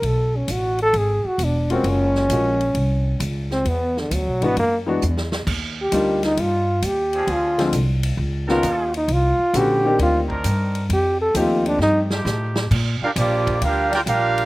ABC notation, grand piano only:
X:1
M:4/4
L:1/8
Q:"Swing" 1/4=133
K:Bb
V:1 name="Grand piano"
z6 z [^G,B,_DF^F]- | [^G,B,_DF^F]2 [=F,_A,B,D_G] z4 z | z3 [=E,^G,=B,D^F] z [E,G,B,DF] z2 | z2 [G,B,DEF]3 z3 |
z [D,F,_A,CF] z3 [E,B,_C_DF] z2 | z2 [D,A,_C_D_G] [E,B,=C=D=G]2 z3 | z2 [F,A,CEG]3 z3 | z8 |]